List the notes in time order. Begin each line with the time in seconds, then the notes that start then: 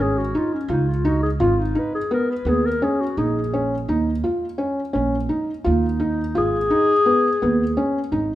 0.00 G#1 C#4 G#4
0.18 F#4
0.35 D#4 F4
0.53 C#4
0.68 C#2 D#4 F4
0.88 F4
1.05 D#4 F#4
1.23 G#4
1.40 G#1 F4
1.59 D#4
1.75 D#4 B4
1.95 G#4
2.11 B3 A#4
2.30 B4
2.45 D#2 B3 G#4
2.66 A#4
2.82 C#4 G#4
3.01 F#4
3.17 A#1 D#4 G#4
3.54 C#4
3.88 D#2 D#4
4.24 F4
4.58 C#4
4.93 A#1 C#4
5.29 D#4
5.64 D#2 D#4 F4
6.00 D#4
6.35 G#1 F4 G#4
6.70 D#4
7.06 B3
7.42 D#2 B3
7.77 C#4
8.12 G#1 D#4